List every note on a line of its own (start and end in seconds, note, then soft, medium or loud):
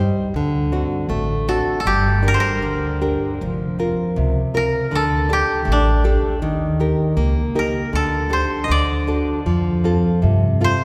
0.00 0.33 G3 medium
0.00 0.27 D#4 medium
0.00 0.27 G4 soft
0.00 0.28 C5 medium
0.34 0.83 D2 medium
0.34 1.08 D3 medium
0.72 1.32 C4 soft
0.72 1.33 D4 soft
0.72 1.33 F#4 medium
1.09 1.58 A1 medium
1.09 1.83 A3 medium
1.48 1.78 C4 soft
1.48 1.79 D4 soft
1.48 1.79 F#4 medium
1.48 1.80 A4 medium
1.80 2.34 A4 medium
1.85 2.36 G1 medium
1.85 2.61 G3 medium
1.85 3.91 G4 medium
2.22 2.85 D4 soft
2.22 2.86 G4 soft
2.22 2.86 A#4 medium
2.28 2.40 A#4 medium
2.34 4.06 C5 medium
2.40 4.24 A#4 medium
2.62 3.13 D2 medium
2.62 3.38 D3 medium
3.02 3.33 D4 soft
3.02 3.33 G4 soft
3.02 3.33 A#4 medium
3.41 3.91 F1 medium
3.41 4.15 F3 medium
3.79 4.39 C4 soft
3.79 4.40 F4 soft
3.79 4.40 A#4 soft
4.16 4.66 C#2 medium
4.16 4.90 C3 medium
4.54 4.84 C4 soft
4.54 4.85 F4 soft
4.54 4.85 A#4 medium
4.54 5.01 A#4 medium
4.91 5.41 D2 medium
4.91 5.64 D3 medium
4.95 6.86 A4 loud
5.29 5.89 D4 soft
5.29 5.89 G4 soft
5.29 7.37 G4 medium
5.29 5.89 A4 soft
5.65 6.16 A1 medium
5.65 6.38 A3 medium
5.72 8.14 D4 medium
6.04 6.34 D4 medium
6.04 6.34 G4 soft
6.04 6.35 A4 medium
6.42 6.91 D#2 medium
6.42 7.15 D#3 medium
6.80 7.40 D#4 soft
6.80 7.40 G4 soft
6.80 7.40 A#4 medium
7.17 7.66 C#2 medium
7.17 7.90 A#3 medium
7.55 7.85 D#4 soft
7.55 7.85 G4 soft
7.55 7.85 A#4 medium
7.55 8.01 A#4 medium
7.93 8.42 D2 medium
7.93 8.67 D3 medium
7.93 9.86 A4 medium
8.30 8.61 D4 soft
8.30 8.61 G4 soft
8.30 8.61 A4 soft
8.30 10.04 C5 medium
8.64 8.77 D#5 medium
8.68 9.20 D2 medium
8.68 9.44 D3 medium
8.68 10.31 D5 medium
9.07 9.38 D4 soft
9.07 9.39 F#4 soft
9.07 9.39 A4 soft
9.46 9.97 F2 medium
9.46 10.21 F3 medium
9.84 10.46 C4 soft
9.84 10.47 F4 soft
9.84 10.47 A4 soft
10.22 10.73 G2 medium
10.22 10.84 C3 medium
10.61 10.84 C4 soft
10.61 10.84 F4 soft
10.61 10.84 A4 medium
10.61 10.84 C5 medium